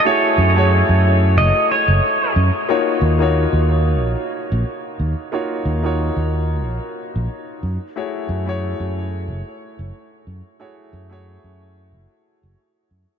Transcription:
X:1
M:4/4
L:1/16
Q:"Swing 16ths" 1/4=91
K:Gblyd
V:1 name="Pedal steel guitar"
d8 e2 d4 z2 | z16 | z16 | z16 |
z16 |]
V:2 name="Grand piano"
[=A,_FG_Ad]3 [=A,FG_Ad]12- [=A,FG_Ad] | [B,EFGd]3 [B,EFGd]12- [B,EFGd] | [B,EFGd]3 [B,EFGd]8- [B,EFGd]3 z2 | [=A,_FG_Ad]3 [=A,FG_Ad]12- [=A,FG_Ad] |
[=A,_FG_Ad]3 [=A,FG_Ad]12- [=A,FG_Ad] |]
V:3 name="Fretless electric bass" clef=bass
z2 G,,3 G,,3 G,,, z2 G,,, z2 G,, z | z2 E,,3 E,,3 B,,, z2 B,,, z2 E,, z | z2 E,,3 E,,3 B,,, z2 B,,, z2 G,, z | z2 G,,3 G,,3 G,,, z2 G,,, z2 G,, z |
z2 G,,3 G,,3 G,,, z2 G,,, z2 G,, z |]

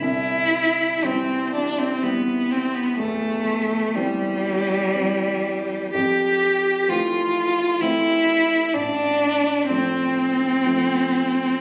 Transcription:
X:1
M:3/4
L:1/16
Q:1/4=62
K:C
V:1 name="Cello"
E4 C2 D C B,2 C B, | A,4 G,8 | G4 F4 E4 | D4 C8 |]
V:2 name="Grand piano" clef=bass
C,,4 [E,G,C]4 [E,G,C]4 | E,,4 [E,G,C]4 [E,G,C]4 | F,,4 [E,A,C]4 [E,A,C]4 | A,,,4 [F,A,C]4 [F,A,C]4 |]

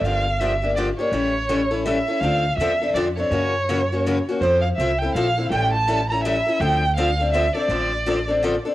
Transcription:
X:1
M:3/4
L:1/16
Q:"Swing" 1/4=164
K:Dm
V:1 name="Violin"
f4 e4 d2 ^c2- | ^c8 e4 | f4 e4 d2 ^c2- | ^c8- c2 z2 |
c2 f2 e2 g2 f4 | g2 a4 b2 e4 | g4 f4 e2 d2- | d8- d2 z2 |]
V:2 name="Steel-string acoustic guitar"
[D,F,B,DG]2 z2 [D,F,B,DG] z [B,DG]2 [D,F,B,DG] z [B,DG]2 | [E,G,^CEA]2 z2 [E,G,CEA] z [CEA]2 [E,G,CEA] z [CEA]2 | [D,F,CDA]2 z2 [D,F,CDA] z [CDA]2 [D,F,CDA] z [CDA]2 | [^C,E,^A,^C^F]2 z2 [C,E,A,CF] z [A,CF]2 [C,E,A,CF] z [A,CF]2 |
[F,CEA]2 z2 [F,CEA] z [CEA]2 [F,CEA] z [CEA]2 | [E,G,^CEA]2 z2 [E,G,CEA] z [CEA]2 [E,G,CEA] z [CEA]2 | [D,F,CDA]2 z2 [D,F,CDA] z [CDA]2 [D,F,CDA] z [CDA]2 | [D,F,CDA]2 z2 [D,F,CDA] z [CDA]2 [D,F,CDA] z [CDA]2 |]
V:3 name="Upright bass" clef=bass
G,,,12 | A,,,12 | D,,4 E,,4 F,,4 | ^F,,12 |
F,,4 C,,4 B,,,4 | A,,,12 | D,,12 | A,,,12 |]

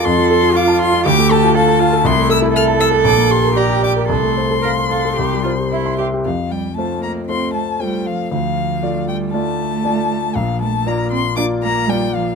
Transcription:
X:1
M:4/4
L:1/16
Q:1/4=117
K:F
V:1 name="Violin"
c'2 c'2 d'2 c'2 d'2 a2 a4 | c'2 e'2 f'2 e'2 d'2 c'2 b2 d'2 | c'12- c'2 z2 | f2 g2 a2 b2 c'2 a2 g2 f2 |
f6 g2 a8 | f2 a2 b2 c'2 d'2 b2 g2 f2 |]
V:2 name="Grand piano"
F,, F, A F f a f F D,, A, A F f a f A | C,, A, A E e a e A B,,, B, G B d g d B | C,, A, c A f c' f A C,, G, c G e c' e G | F,,4 [A,Fc]4 [A,Fc]4 [A,Fc]4 |
D,,4 [A,Fd]4 [A,Fd]4 [A,Fd]4 | B,,,4 [B,Fd]4 [B,Fd]4 [B,Fd]4 |]
V:3 name="Cello"
A4 F4 G4 A2 F2 | E4 A8 G4 | A4 B2 A2 G2 F2 E2 G2 | F,2 G,2 A,2 B,2 C2 A,2 G,2 F,2 |
F,6 G,2 A,8 | F,2 A,2 B,2 C2 D2 B,2 G,2 F,2 |]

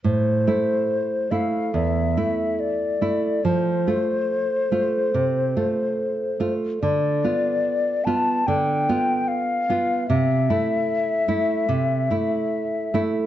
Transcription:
X:1
M:4/4
L:1/8
Q:1/4=72
K:Am
V:1 name="Flute"
c3 f e2 d2 | c6- c z | d3 a g2 f2 | e6- e z |]
V:2 name="Nylon-string guitar"
A,, [A,E]2 [A,E] E,, [A,E]2 [A,E] | F, [A,F]2 [A,F] C, [A,F]2 [A,F] | D, [B,F]2 [B,F] D, [B,F]2 [B,F] | C, [A,E]2 [A,E] C, [A,E]2 [A,E] |]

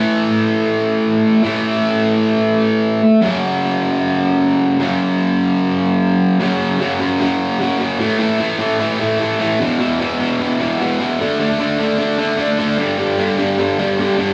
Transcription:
X:1
M:4/4
L:1/8
Q:1/4=151
K:A
V:1 name="Distorted electric guitar" clef=bass
[A,,E,A,]6- [A,,E,A,] [A,,E,A,]- | [A,,E,A,]6- [A,,E,A,] z | [F,,C,F,]8 | [F,,C,F,]8 |
[F,,C,F,]2 [F,,C,F,] [F,,C,F,] [F,,C,F,]2 [F,,C,F,] [F,,C,F,] | [A,,E,A,] [A,,E,A,] [A,,E,A,] [A,,E,A,] [A,,E,A,] [A,,E,A,] [A,,E,A,] [A,,E,A,] | [E,,B,,E,] [E,,B,,E,] [E,,B,,E,] [E,,B,,E,] [E,,B,,E,] [E,,B,,E,] [E,,B,,E,] [E,,B,,E,] | [D,A,D] [D,A,D] [D,A,D] [D,A,D] [D,A,D] [D,A,D] [D,A,D] [D,A,D] |
[=G,,D,=G,] [G,,D,G,] [G,,D,G,] [G,,D,G,] [G,,D,G,] [G,,D,G,] [G,,D,G,] [G,,D,G,] |]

